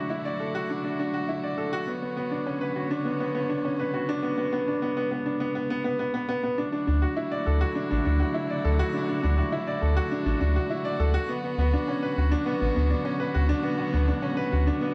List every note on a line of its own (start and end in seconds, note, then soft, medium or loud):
0.00 1.83 D3 medium
0.00 5.36 F#3 medium
0.00 1.83 A3 medium
0.00 0.70 D4 medium
0.00 0.10 E4 medium
0.00 1.83 E4 medium
0.00 0.55 F#4 medium
0.00 5.36 F#4 medium
0.00 0.40 A4 medium
0.00 0.25 D5 medium
0.10 0.24 E4 medium
0.25 0.34 D5 medium
0.40 0.54 A4 medium
0.55 0.69 F#4 medium
0.70 0.78 D4 medium
0.84 0.98 D4 medium
0.99 1.13 D4 medium
1.14 1.28 F#4 medium
1.29 1.43 E4 medium
1.44 1.52 D5 medium
1.58 1.72 A4 medium
1.73 1.87 F#4 loud
1.86 5.37 D3 medium
1.86 5.36 B3 medium
1.86 1.96 B3 medium
1.86 5.36 C#5 medium
2.02 2.15 B3 medium
2.17 2.31 B3 medium
2.31 2.45 D4 medium
2.46 2.60 C#4 medium
2.61 2.69 B4 medium
2.76 2.90 F#4 medium
2.91 3.03 D4 medium
3.05 3.14 B3 medium
3.20 3.33 B3 medium
3.35 3.49 B3 medium
3.49 3.63 D4 medium
3.65 3.78 C#4 medium
3.79 3.87 B4 medium
3.94 4.08 F#4 medium
4.09 4.21 D4 loud
4.23 4.31 B3 medium
4.38 4.51 B3 medium
4.52 4.66 B3 medium
4.68 4.80 D4 medium
4.82 4.90 B3 medium
4.97 5.10 B3 medium
5.11 5.25 B3 medium
5.26 5.38 D4 medium
5.40 5.49 B3 medium
5.55 5.68 B3 medium
5.70 5.79 B3 medium
5.84 5.97 B3 medium
5.99 6.08 B3 medium
6.14 6.26 B3 medium
6.29 6.37 B3 medium
6.43 6.56 B3 medium
6.57 11.25 D3 medium
6.57 11.24 F#3 medium
6.57 11.24 A3 medium
6.57 6.66 D4 medium
6.57 11.25 E4 medium
6.57 14.94 F#4 medium
6.72 6.86 D4 medium
6.87 7.06 D2 medium
6.87 7.01 D4 medium
7.02 7.16 F#4 medium
7.17 7.31 E4 medium
7.32 7.40 D5 medium
7.46 7.65 D2 loud
7.46 7.60 A4 medium
7.61 7.75 F#4 medium
7.75 7.84 D4 medium
7.91 8.00 A1 medium
7.91 8.04 D4 medium
8.05 8.24 D2 medium
8.05 8.19 D4 medium
8.20 8.34 F#4 medium
8.34 8.48 E4 medium
8.50 8.58 D5 medium
8.65 8.82 D2 loud
8.65 8.78 A4 medium
8.79 8.93 F#4 loud
8.94 9.02 D4 medium
9.09 9.22 D4 medium
9.23 9.41 D2 loud
9.23 9.37 D4 medium
9.38 9.52 F#4 medium
9.52 9.66 E4 medium
9.67 9.76 D5 medium
9.82 10.00 D2 loud
9.82 9.96 A4 medium
9.97 10.10 F#4 loud
10.12 10.20 D4 medium
10.26 10.35 A1 medium
10.26 10.39 D4 medium
10.40 10.59 D2 medium
10.40 10.54 D4 medium
10.56 10.70 F#4 medium
10.70 10.84 E4 medium
10.85 10.93 D5 medium
11.00 11.17 D2 loud
11.00 11.14 A4 medium
11.14 11.28 F#4 loud
11.28 14.94 D3 medium
11.28 14.94 F#3 medium
11.28 14.94 B3 medium
11.28 11.37 B3 medium
11.44 11.57 B3 medium
11.58 11.76 D2 loud
11.58 11.72 B3 medium
11.73 11.87 D4 medium
11.88 12.02 C#4 medium
12.03 12.11 B4 medium
12.17 12.35 D2 loud
12.17 12.31 F#4 medium
12.31 12.46 D4 loud
12.46 12.55 B3 medium
12.61 12.70 A1 medium
12.61 12.74 B3 medium
12.76 12.94 D2 medium
12.76 12.90 B3 medium
12.90 13.04 D4 medium
13.05 13.19 C#4 medium
13.20 13.28 B4 medium
13.34 13.53 D2 loud
13.34 13.49 F#4 medium
13.49 13.63 D4 loud
13.63 13.72 B3 medium
13.79 13.91 B3 medium
13.93 14.12 D2 loud
13.93 14.07 B3 medium
14.08 14.22 D4 medium
14.22 14.37 C#4 medium
14.37 14.46 B4 medium
14.52 14.70 D2 loud
14.52 14.66 F#4 medium
14.67 14.81 D4 medium
14.81 14.90 B3 medium